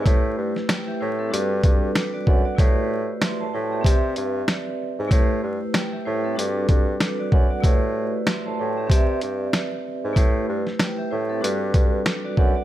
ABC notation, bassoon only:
X:1
M:4/4
L:1/16
Q:"Swing 16ths" 1/4=95
K:Ador
V:1 name="Bassoon" clef=bass
A,,2 G,, z3 A,,2 G,,2 G,,2 z2 F,, z | A,,4 z A,, A,,2 C,2 G,,2 z3 ^G,, | A,,2 G,, z3 A,,2 G,,2 G,,2 z2 F,, z | A,,4 z A,, A,,2 C,2 G,,2 z3 ^G,, |
A,,2 G,, z3 A,,2 G,,2 G,,2 z2 F,, z |]